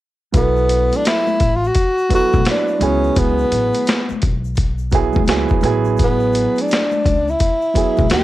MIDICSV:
0, 0, Header, 1, 6, 480
1, 0, Start_track
1, 0, Key_signature, 3, "major"
1, 0, Tempo, 705882
1, 233, Time_signature, 4, 2, 24, 8
1, 5601, End_track
2, 0, Start_track
2, 0, Title_t, "Tenor saxophone"
2, 0, Program_c, 0, 66
2, 249, Note_on_c, 0, 59, 88
2, 654, Note_on_c, 0, 62, 84
2, 664, Note_off_c, 0, 59, 0
2, 728, Note_on_c, 0, 64, 96
2, 739, Note_off_c, 0, 62, 0
2, 1058, Note_on_c, 0, 65, 82
2, 1068, Note_off_c, 0, 64, 0
2, 1136, Note_on_c, 0, 66, 91
2, 1146, Note_off_c, 0, 65, 0
2, 1446, Note_off_c, 0, 66, 0
2, 1461, Note_on_c, 0, 66, 101
2, 1671, Note_off_c, 0, 66, 0
2, 1703, Note_on_c, 0, 62, 95
2, 1932, Note_on_c, 0, 61, 82
2, 1942, Note_off_c, 0, 62, 0
2, 2166, Note_on_c, 0, 59, 87
2, 2176, Note_off_c, 0, 61, 0
2, 2879, Note_off_c, 0, 59, 0
2, 4105, Note_on_c, 0, 59, 82
2, 4498, Note_on_c, 0, 62, 82
2, 4508, Note_off_c, 0, 59, 0
2, 4966, Note_on_c, 0, 64, 86
2, 4976, Note_off_c, 0, 62, 0
2, 5521, Note_off_c, 0, 64, 0
2, 5526, Note_on_c, 0, 67, 109
2, 5601, Note_off_c, 0, 67, 0
2, 5601, End_track
3, 0, Start_track
3, 0, Title_t, "Grand piano"
3, 0, Program_c, 1, 0
3, 220, Note_on_c, 1, 54, 64
3, 226, Note_on_c, 1, 59, 60
3, 236, Note_on_c, 1, 64, 64
3, 244, Note_on_c, 1, 69, 73
3, 909, Note_off_c, 1, 54, 0
3, 912, Note_off_c, 1, 59, 0
3, 917, Note_off_c, 1, 64, 0
3, 921, Note_off_c, 1, 69, 0
3, 1421, Note_on_c, 1, 54, 62
3, 1430, Note_on_c, 1, 59, 64
3, 1436, Note_on_c, 1, 64, 58
3, 1446, Note_on_c, 1, 69, 74
3, 1616, Note_off_c, 1, 54, 0
3, 1620, Note_off_c, 1, 59, 0
3, 1623, Note_off_c, 1, 64, 0
3, 1628, Note_off_c, 1, 69, 0
3, 1662, Note_on_c, 1, 54, 61
3, 1668, Note_on_c, 1, 59, 53
3, 1678, Note_on_c, 1, 64, 54
3, 1682, Note_on_c, 1, 71, 66
3, 1889, Note_off_c, 1, 54, 0
3, 1898, Note_off_c, 1, 59, 0
3, 1899, Note_on_c, 1, 54, 73
3, 1905, Note_off_c, 1, 64, 0
3, 1908, Note_on_c, 1, 59, 71
3, 1915, Note_on_c, 1, 64, 65
3, 1917, Note_off_c, 1, 71, 0
3, 1923, Note_on_c, 1, 68, 81
3, 2689, Note_off_c, 1, 54, 0
3, 2693, Note_off_c, 1, 59, 0
3, 2696, Note_off_c, 1, 64, 0
3, 2700, Note_off_c, 1, 68, 0
3, 3342, Note_on_c, 1, 54, 78
3, 3348, Note_on_c, 1, 59, 71
3, 3358, Note_on_c, 1, 64, 78
3, 3364, Note_on_c, 1, 68, 84
3, 3536, Note_off_c, 1, 54, 0
3, 3539, Note_off_c, 1, 59, 0
3, 3544, Note_off_c, 1, 64, 0
3, 3547, Note_off_c, 1, 68, 0
3, 3584, Note_on_c, 1, 54, 75
3, 3593, Note_on_c, 1, 59, 68
3, 3600, Note_on_c, 1, 64, 68
3, 3606, Note_on_c, 1, 68, 79
3, 3813, Note_off_c, 1, 54, 0
3, 3820, Note_off_c, 1, 59, 0
3, 3824, Note_on_c, 1, 54, 89
3, 3830, Note_off_c, 1, 64, 0
3, 3830, Note_on_c, 1, 59, 82
3, 3834, Note_off_c, 1, 68, 0
3, 3841, Note_on_c, 1, 64, 85
3, 3844, Note_on_c, 1, 68, 96
3, 4611, Note_off_c, 1, 54, 0
3, 4614, Note_off_c, 1, 59, 0
3, 4619, Note_off_c, 1, 64, 0
3, 4621, Note_off_c, 1, 68, 0
3, 5262, Note_on_c, 1, 54, 68
3, 5268, Note_on_c, 1, 59, 60
3, 5278, Note_on_c, 1, 64, 61
3, 5285, Note_on_c, 1, 68, 77
3, 5456, Note_off_c, 1, 54, 0
3, 5459, Note_off_c, 1, 59, 0
3, 5464, Note_off_c, 1, 64, 0
3, 5467, Note_off_c, 1, 68, 0
3, 5501, Note_on_c, 1, 53, 60
3, 5510, Note_on_c, 1, 58, 55
3, 5519, Note_on_c, 1, 63, 55
3, 5526, Note_on_c, 1, 67, 70
3, 5601, Note_off_c, 1, 53, 0
3, 5601, Note_off_c, 1, 58, 0
3, 5601, Note_off_c, 1, 63, 0
3, 5601, Note_off_c, 1, 67, 0
3, 5601, End_track
4, 0, Start_track
4, 0, Title_t, "Upright bass"
4, 0, Program_c, 2, 32
4, 230, Note_on_c, 2, 35, 99
4, 600, Note_off_c, 2, 35, 0
4, 956, Note_on_c, 2, 33, 80
4, 1139, Note_off_c, 2, 33, 0
4, 1589, Note_on_c, 2, 35, 86
4, 1653, Note_off_c, 2, 35, 0
4, 1909, Note_on_c, 2, 37, 103
4, 2095, Note_off_c, 2, 37, 0
4, 2152, Note_on_c, 2, 37, 98
4, 2337, Note_off_c, 2, 37, 0
4, 2390, Note_on_c, 2, 33, 89
4, 2512, Note_off_c, 2, 33, 0
4, 2876, Note_on_c, 2, 35, 81
4, 3484, Note_off_c, 2, 35, 0
4, 3509, Note_on_c, 2, 37, 90
4, 3694, Note_off_c, 2, 37, 0
4, 3828, Note_on_c, 2, 33, 96
4, 4384, Note_off_c, 2, 33, 0
4, 4799, Note_on_c, 2, 37, 81
4, 4981, Note_off_c, 2, 37, 0
4, 5430, Note_on_c, 2, 35, 84
4, 5494, Note_off_c, 2, 35, 0
4, 5516, Note_on_c, 2, 39, 99
4, 5601, Note_off_c, 2, 39, 0
4, 5601, End_track
5, 0, Start_track
5, 0, Title_t, "Muted upright bass strokes"
5, 2791, Note_on_c, 9, 29, 46
5, 2859, Note_off_c, 9, 29, 0
5, 5601, End_track
6, 0, Start_track
6, 0, Title_t, "Drums"
6, 229, Note_on_c, 9, 82, 58
6, 230, Note_on_c, 9, 42, 89
6, 231, Note_on_c, 9, 36, 100
6, 297, Note_off_c, 9, 82, 0
6, 298, Note_off_c, 9, 42, 0
6, 299, Note_off_c, 9, 36, 0
6, 386, Note_on_c, 9, 82, 39
6, 454, Note_off_c, 9, 82, 0
6, 472, Note_on_c, 9, 42, 75
6, 472, Note_on_c, 9, 82, 45
6, 540, Note_off_c, 9, 42, 0
6, 540, Note_off_c, 9, 82, 0
6, 624, Note_on_c, 9, 63, 39
6, 624, Note_on_c, 9, 82, 39
6, 630, Note_on_c, 9, 42, 51
6, 692, Note_off_c, 9, 63, 0
6, 692, Note_off_c, 9, 82, 0
6, 698, Note_off_c, 9, 42, 0
6, 711, Note_on_c, 9, 82, 62
6, 716, Note_on_c, 9, 42, 77
6, 727, Note_on_c, 9, 38, 103
6, 779, Note_off_c, 9, 82, 0
6, 784, Note_off_c, 9, 42, 0
6, 795, Note_off_c, 9, 38, 0
6, 864, Note_on_c, 9, 63, 66
6, 864, Note_on_c, 9, 82, 42
6, 932, Note_off_c, 9, 63, 0
6, 932, Note_off_c, 9, 82, 0
6, 951, Note_on_c, 9, 42, 64
6, 953, Note_on_c, 9, 63, 44
6, 953, Note_on_c, 9, 64, 57
6, 953, Note_on_c, 9, 82, 44
6, 955, Note_on_c, 9, 36, 89
6, 1019, Note_off_c, 9, 42, 0
6, 1021, Note_off_c, 9, 63, 0
6, 1021, Note_off_c, 9, 64, 0
6, 1021, Note_off_c, 9, 82, 0
6, 1023, Note_off_c, 9, 36, 0
6, 1115, Note_on_c, 9, 82, 41
6, 1183, Note_off_c, 9, 82, 0
6, 1187, Note_on_c, 9, 42, 73
6, 1191, Note_on_c, 9, 64, 50
6, 1191, Note_on_c, 9, 82, 53
6, 1193, Note_on_c, 9, 36, 77
6, 1255, Note_off_c, 9, 42, 0
6, 1259, Note_off_c, 9, 64, 0
6, 1259, Note_off_c, 9, 82, 0
6, 1261, Note_off_c, 9, 36, 0
6, 1346, Note_on_c, 9, 82, 42
6, 1414, Note_off_c, 9, 82, 0
6, 1428, Note_on_c, 9, 82, 44
6, 1431, Note_on_c, 9, 36, 66
6, 1432, Note_on_c, 9, 42, 69
6, 1496, Note_off_c, 9, 82, 0
6, 1499, Note_off_c, 9, 36, 0
6, 1500, Note_off_c, 9, 42, 0
6, 1584, Note_on_c, 9, 63, 67
6, 1584, Note_on_c, 9, 82, 46
6, 1590, Note_on_c, 9, 36, 91
6, 1652, Note_off_c, 9, 63, 0
6, 1652, Note_off_c, 9, 82, 0
6, 1658, Note_off_c, 9, 36, 0
6, 1669, Note_on_c, 9, 42, 94
6, 1669, Note_on_c, 9, 82, 53
6, 1677, Note_on_c, 9, 38, 109
6, 1737, Note_off_c, 9, 42, 0
6, 1737, Note_off_c, 9, 82, 0
6, 1745, Note_off_c, 9, 38, 0
6, 1822, Note_on_c, 9, 82, 43
6, 1890, Note_off_c, 9, 82, 0
6, 1910, Note_on_c, 9, 64, 68
6, 1910, Note_on_c, 9, 82, 50
6, 1912, Note_on_c, 9, 42, 70
6, 1978, Note_off_c, 9, 64, 0
6, 1978, Note_off_c, 9, 82, 0
6, 1980, Note_off_c, 9, 42, 0
6, 2067, Note_on_c, 9, 82, 39
6, 2135, Note_off_c, 9, 82, 0
6, 2146, Note_on_c, 9, 82, 60
6, 2152, Note_on_c, 9, 42, 83
6, 2153, Note_on_c, 9, 36, 102
6, 2214, Note_off_c, 9, 82, 0
6, 2220, Note_off_c, 9, 42, 0
6, 2221, Note_off_c, 9, 36, 0
6, 2300, Note_on_c, 9, 82, 44
6, 2368, Note_off_c, 9, 82, 0
6, 2388, Note_on_c, 9, 82, 46
6, 2393, Note_on_c, 9, 42, 76
6, 2456, Note_off_c, 9, 82, 0
6, 2461, Note_off_c, 9, 42, 0
6, 2537, Note_on_c, 9, 63, 38
6, 2537, Note_on_c, 9, 82, 38
6, 2547, Note_on_c, 9, 42, 53
6, 2605, Note_off_c, 9, 63, 0
6, 2605, Note_off_c, 9, 82, 0
6, 2615, Note_off_c, 9, 42, 0
6, 2622, Note_on_c, 9, 82, 62
6, 2633, Note_on_c, 9, 42, 87
6, 2643, Note_on_c, 9, 38, 110
6, 2690, Note_off_c, 9, 82, 0
6, 2701, Note_off_c, 9, 42, 0
6, 2711, Note_off_c, 9, 38, 0
6, 2781, Note_on_c, 9, 63, 65
6, 2781, Note_on_c, 9, 82, 45
6, 2849, Note_off_c, 9, 63, 0
6, 2849, Note_off_c, 9, 82, 0
6, 2867, Note_on_c, 9, 42, 63
6, 2868, Note_on_c, 9, 63, 44
6, 2868, Note_on_c, 9, 64, 62
6, 2868, Note_on_c, 9, 82, 42
6, 2875, Note_on_c, 9, 36, 84
6, 2935, Note_off_c, 9, 42, 0
6, 2936, Note_off_c, 9, 63, 0
6, 2936, Note_off_c, 9, 64, 0
6, 2936, Note_off_c, 9, 82, 0
6, 2943, Note_off_c, 9, 36, 0
6, 3022, Note_on_c, 9, 82, 39
6, 3090, Note_off_c, 9, 82, 0
6, 3096, Note_on_c, 9, 64, 50
6, 3096, Note_on_c, 9, 82, 52
6, 3108, Note_on_c, 9, 42, 72
6, 3113, Note_on_c, 9, 36, 80
6, 3164, Note_off_c, 9, 64, 0
6, 3164, Note_off_c, 9, 82, 0
6, 3176, Note_off_c, 9, 42, 0
6, 3181, Note_off_c, 9, 36, 0
6, 3252, Note_on_c, 9, 82, 47
6, 3320, Note_off_c, 9, 82, 0
6, 3337, Note_on_c, 9, 82, 43
6, 3349, Note_on_c, 9, 42, 69
6, 3350, Note_on_c, 9, 36, 72
6, 3405, Note_off_c, 9, 82, 0
6, 3417, Note_off_c, 9, 42, 0
6, 3418, Note_off_c, 9, 36, 0
6, 3488, Note_on_c, 9, 63, 69
6, 3488, Note_on_c, 9, 82, 45
6, 3509, Note_on_c, 9, 36, 98
6, 3556, Note_off_c, 9, 63, 0
6, 3556, Note_off_c, 9, 82, 0
6, 3575, Note_on_c, 9, 82, 51
6, 3577, Note_off_c, 9, 36, 0
6, 3588, Note_on_c, 9, 42, 101
6, 3596, Note_on_c, 9, 38, 113
6, 3643, Note_off_c, 9, 82, 0
6, 3656, Note_off_c, 9, 42, 0
6, 3664, Note_off_c, 9, 38, 0
6, 3729, Note_on_c, 9, 82, 43
6, 3746, Note_on_c, 9, 36, 82
6, 3797, Note_off_c, 9, 82, 0
6, 3814, Note_off_c, 9, 36, 0
6, 3815, Note_on_c, 9, 64, 69
6, 3815, Note_on_c, 9, 82, 46
6, 3832, Note_on_c, 9, 42, 64
6, 3883, Note_off_c, 9, 64, 0
6, 3883, Note_off_c, 9, 82, 0
6, 3900, Note_off_c, 9, 42, 0
6, 3975, Note_on_c, 9, 82, 41
6, 4043, Note_off_c, 9, 82, 0
6, 4060, Note_on_c, 9, 82, 59
6, 4075, Note_on_c, 9, 36, 102
6, 4077, Note_on_c, 9, 42, 85
6, 4128, Note_off_c, 9, 82, 0
6, 4143, Note_off_c, 9, 36, 0
6, 4145, Note_off_c, 9, 42, 0
6, 4213, Note_on_c, 9, 82, 43
6, 4281, Note_off_c, 9, 82, 0
6, 4303, Note_on_c, 9, 82, 50
6, 4318, Note_on_c, 9, 42, 79
6, 4371, Note_off_c, 9, 82, 0
6, 4386, Note_off_c, 9, 42, 0
6, 4462, Note_on_c, 9, 63, 40
6, 4462, Note_on_c, 9, 82, 37
6, 4477, Note_on_c, 9, 42, 54
6, 4530, Note_off_c, 9, 63, 0
6, 4530, Note_off_c, 9, 82, 0
6, 4544, Note_on_c, 9, 82, 64
6, 4545, Note_off_c, 9, 42, 0
6, 4565, Note_on_c, 9, 42, 85
6, 4576, Note_on_c, 9, 38, 109
6, 4612, Note_off_c, 9, 82, 0
6, 4633, Note_off_c, 9, 42, 0
6, 4644, Note_off_c, 9, 38, 0
6, 4702, Note_on_c, 9, 63, 70
6, 4702, Note_on_c, 9, 82, 45
6, 4770, Note_off_c, 9, 63, 0
6, 4770, Note_off_c, 9, 82, 0
6, 4791, Note_on_c, 9, 63, 44
6, 4791, Note_on_c, 9, 64, 61
6, 4791, Note_on_c, 9, 82, 45
6, 4799, Note_on_c, 9, 36, 93
6, 4801, Note_on_c, 9, 42, 63
6, 4859, Note_off_c, 9, 63, 0
6, 4859, Note_off_c, 9, 64, 0
6, 4859, Note_off_c, 9, 82, 0
6, 4867, Note_off_c, 9, 36, 0
6, 4869, Note_off_c, 9, 42, 0
6, 4951, Note_on_c, 9, 82, 40
6, 5019, Note_off_c, 9, 82, 0
6, 5027, Note_on_c, 9, 64, 49
6, 5027, Note_on_c, 9, 82, 52
6, 5033, Note_on_c, 9, 42, 76
6, 5036, Note_on_c, 9, 36, 75
6, 5095, Note_off_c, 9, 64, 0
6, 5095, Note_off_c, 9, 82, 0
6, 5101, Note_off_c, 9, 42, 0
6, 5104, Note_off_c, 9, 36, 0
6, 5178, Note_on_c, 9, 82, 42
6, 5246, Note_off_c, 9, 82, 0
6, 5267, Note_on_c, 9, 82, 43
6, 5273, Note_on_c, 9, 36, 66
6, 5276, Note_on_c, 9, 42, 80
6, 5335, Note_off_c, 9, 82, 0
6, 5341, Note_off_c, 9, 36, 0
6, 5344, Note_off_c, 9, 42, 0
6, 5420, Note_on_c, 9, 63, 67
6, 5420, Note_on_c, 9, 82, 47
6, 5431, Note_on_c, 9, 36, 87
6, 5488, Note_off_c, 9, 63, 0
6, 5488, Note_off_c, 9, 82, 0
6, 5499, Note_off_c, 9, 36, 0
6, 5502, Note_on_c, 9, 82, 50
6, 5507, Note_on_c, 9, 42, 99
6, 5515, Note_on_c, 9, 38, 105
6, 5570, Note_off_c, 9, 82, 0
6, 5575, Note_off_c, 9, 42, 0
6, 5583, Note_off_c, 9, 38, 0
6, 5601, End_track
0, 0, End_of_file